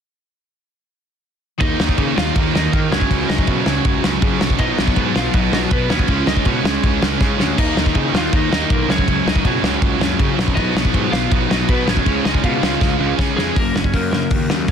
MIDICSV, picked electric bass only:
0, 0, Header, 1, 2, 480
1, 0, Start_track
1, 0, Key_signature, 6, "major"
1, 0, Tempo, 373367
1, 2070, Time_signature, 4, 2, 24, 8
1, 18918, End_track
2, 0, Start_track
2, 0, Title_t, "Picked electric bass"
2, 0, Program_c, 0, 34
2, 2069, Note_on_c, 0, 39, 91
2, 2231, Note_off_c, 0, 39, 0
2, 2307, Note_on_c, 0, 39, 89
2, 2470, Note_off_c, 0, 39, 0
2, 2547, Note_on_c, 0, 49, 83
2, 2709, Note_off_c, 0, 49, 0
2, 2792, Note_on_c, 0, 39, 89
2, 2952, Note_off_c, 0, 39, 0
2, 3036, Note_on_c, 0, 39, 97
2, 3195, Note_off_c, 0, 39, 0
2, 3264, Note_on_c, 0, 39, 89
2, 3427, Note_off_c, 0, 39, 0
2, 3511, Note_on_c, 0, 51, 87
2, 3672, Note_off_c, 0, 51, 0
2, 3744, Note_on_c, 0, 37, 86
2, 3907, Note_off_c, 0, 37, 0
2, 3993, Note_on_c, 0, 37, 103
2, 4153, Note_off_c, 0, 37, 0
2, 4232, Note_on_c, 0, 37, 87
2, 4392, Note_off_c, 0, 37, 0
2, 4470, Note_on_c, 0, 47, 91
2, 4631, Note_off_c, 0, 47, 0
2, 4714, Note_on_c, 0, 37, 88
2, 4873, Note_off_c, 0, 37, 0
2, 4951, Note_on_c, 0, 37, 104
2, 5111, Note_off_c, 0, 37, 0
2, 5198, Note_on_c, 0, 37, 86
2, 5355, Note_off_c, 0, 37, 0
2, 5429, Note_on_c, 0, 49, 94
2, 5590, Note_off_c, 0, 49, 0
2, 5672, Note_on_c, 0, 35, 88
2, 5832, Note_off_c, 0, 35, 0
2, 5903, Note_on_c, 0, 35, 102
2, 6066, Note_off_c, 0, 35, 0
2, 6152, Note_on_c, 0, 35, 93
2, 6312, Note_off_c, 0, 35, 0
2, 6390, Note_on_c, 0, 44, 92
2, 6550, Note_off_c, 0, 44, 0
2, 6635, Note_on_c, 0, 35, 92
2, 6794, Note_off_c, 0, 35, 0
2, 6869, Note_on_c, 0, 35, 92
2, 7029, Note_off_c, 0, 35, 0
2, 7097, Note_on_c, 0, 35, 92
2, 7262, Note_off_c, 0, 35, 0
2, 7341, Note_on_c, 0, 47, 91
2, 7504, Note_off_c, 0, 47, 0
2, 7581, Note_on_c, 0, 39, 88
2, 7744, Note_off_c, 0, 39, 0
2, 7821, Note_on_c, 0, 37, 97
2, 7984, Note_off_c, 0, 37, 0
2, 8059, Note_on_c, 0, 37, 85
2, 8222, Note_off_c, 0, 37, 0
2, 8301, Note_on_c, 0, 47, 90
2, 8464, Note_off_c, 0, 47, 0
2, 8536, Note_on_c, 0, 37, 80
2, 8701, Note_off_c, 0, 37, 0
2, 8793, Note_on_c, 0, 37, 101
2, 8951, Note_off_c, 0, 37, 0
2, 9027, Note_on_c, 0, 37, 86
2, 9188, Note_off_c, 0, 37, 0
2, 9268, Note_on_c, 0, 49, 85
2, 9428, Note_off_c, 0, 49, 0
2, 9505, Note_on_c, 0, 38, 87
2, 9666, Note_off_c, 0, 38, 0
2, 9752, Note_on_c, 0, 39, 99
2, 9911, Note_off_c, 0, 39, 0
2, 9983, Note_on_c, 0, 39, 84
2, 10145, Note_off_c, 0, 39, 0
2, 10225, Note_on_c, 0, 49, 90
2, 10386, Note_off_c, 0, 49, 0
2, 10459, Note_on_c, 0, 39, 80
2, 10622, Note_off_c, 0, 39, 0
2, 10708, Note_on_c, 0, 39, 97
2, 10868, Note_off_c, 0, 39, 0
2, 10939, Note_on_c, 0, 39, 94
2, 11102, Note_off_c, 0, 39, 0
2, 11187, Note_on_c, 0, 35, 89
2, 11348, Note_off_c, 0, 35, 0
2, 11417, Note_on_c, 0, 37, 87
2, 11581, Note_off_c, 0, 37, 0
2, 11670, Note_on_c, 0, 37, 96
2, 11830, Note_off_c, 0, 37, 0
2, 11907, Note_on_c, 0, 37, 83
2, 12067, Note_off_c, 0, 37, 0
2, 12146, Note_on_c, 0, 47, 97
2, 12307, Note_off_c, 0, 47, 0
2, 12379, Note_on_c, 0, 37, 80
2, 12542, Note_off_c, 0, 37, 0
2, 12621, Note_on_c, 0, 37, 101
2, 12783, Note_off_c, 0, 37, 0
2, 12863, Note_on_c, 0, 37, 95
2, 13025, Note_off_c, 0, 37, 0
2, 13107, Note_on_c, 0, 49, 94
2, 13268, Note_off_c, 0, 49, 0
2, 13340, Note_on_c, 0, 35, 84
2, 13581, Note_off_c, 0, 35, 0
2, 13586, Note_on_c, 0, 35, 97
2, 13747, Note_off_c, 0, 35, 0
2, 13819, Note_on_c, 0, 35, 87
2, 13982, Note_off_c, 0, 35, 0
2, 14067, Note_on_c, 0, 44, 90
2, 14228, Note_off_c, 0, 44, 0
2, 14302, Note_on_c, 0, 35, 91
2, 14464, Note_off_c, 0, 35, 0
2, 14548, Note_on_c, 0, 35, 98
2, 14709, Note_off_c, 0, 35, 0
2, 14773, Note_on_c, 0, 35, 90
2, 14939, Note_off_c, 0, 35, 0
2, 15028, Note_on_c, 0, 47, 90
2, 15189, Note_off_c, 0, 47, 0
2, 15254, Note_on_c, 0, 32, 88
2, 15420, Note_off_c, 0, 32, 0
2, 15506, Note_on_c, 0, 37, 99
2, 15668, Note_off_c, 0, 37, 0
2, 15747, Note_on_c, 0, 37, 94
2, 15908, Note_off_c, 0, 37, 0
2, 15987, Note_on_c, 0, 47, 93
2, 16149, Note_off_c, 0, 47, 0
2, 16229, Note_on_c, 0, 37, 76
2, 16390, Note_off_c, 0, 37, 0
2, 16474, Note_on_c, 0, 37, 87
2, 16633, Note_off_c, 0, 37, 0
2, 16705, Note_on_c, 0, 37, 88
2, 16868, Note_off_c, 0, 37, 0
2, 16950, Note_on_c, 0, 49, 92
2, 17111, Note_off_c, 0, 49, 0
2, 17191, Note_on_c, 0, 41, 89
2, 17352, Note_off_c, 0, 41, 0
2, 17436, Note_on_c, 0, 30, 91
2, 17644, Note_off_c, 0, 30, 0
2, 17676, Note_on_c, 0, 30, 82
2, 17885, Note_off_c, 0, 30, 0
2, 17918, Note_on_c, 0, 42, 89
2, 18337, Note_off_c, 0, 42, 0
2, 18399, Note_on_c, 0, 39, 92
2, 18607, Note_off_c, 0, 39, 0
2, 18638, Note_on_c, 0, 39, 86
2, 18847, Note_off_c, 0, 39, 0
2, 18877, Note_on_c, 0, 30, 82
2, 18918, Note_off_c, 0, 30, 0
2, 18918, End_track
0, 0, End_of_file